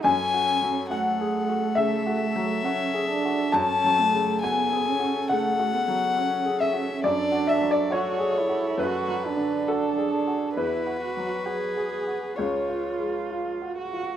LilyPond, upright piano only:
\new Staff \with { instrumentName = "Upright piano" } { \time 4/4 \key fis \minor \tempo 4 = 68 << { gis''4 fis''4 e''2 | a''4 gis''4 fis''4. e''8 | d''8 e''16 d''16 cis''4 b'4 a'4 | b'2 cis''4 r4 | } \\ { \tuplet 3/2 { fis,8 fis'8 fis8 fis'8 gis'8 fis'8 cis8 fis'8 fis8 fis'8 gis'8 fis'8 } | \tuplet 3/2 { fis,8 fis8 cis8 fis'8 gis'8 fis'8 cis8 fis'8 fis8 fis'8 gis'8 fis'8 } | \tuplet 3/2 { fis,8 fis'8 fis8 fis'8 gis'8 fis'8 fis,8 fis8 d8 fis'8 gis'8 fis'8 } | \tuplet 3/2 { e,8 fis'8 fis8 fis'8 gis'8 fis'8 cis,8 eis'8 gis8 eis'8 fis'8 eis'8 } | } >> }